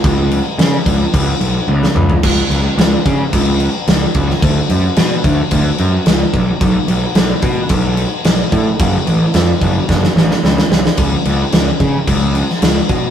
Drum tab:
CC |x-x-x-x-x-x-----|x-x-x-x-x-x-x-x-|x-x-x-x-x-x-x-x-|x-x-x-x-x-x-x-x-|
SD |----o--------o--|----o-------o--o|----o-------o---|----o-------o---|
T1 |------------o---|----------------|----------------|----------------|
T2 |--------------o-|----------------|----------------|----------------|
FT |---------------o|----------------|----------------|----------------|
BD |o-----o-o-------|o-----o-o-----o-|o-----o-o-----o-|o-----o-o-----o-|

CC |x-x-x-x---------|x-x-x-x-x-x-x-x-|
SD |----o---oooooooo|----o------oo---|
T1 |----------------|----------------|
T2 |----------------|----------------|
FT |----------------|----------------|
BD |o-----o-o-------|o-----o-o-----o-|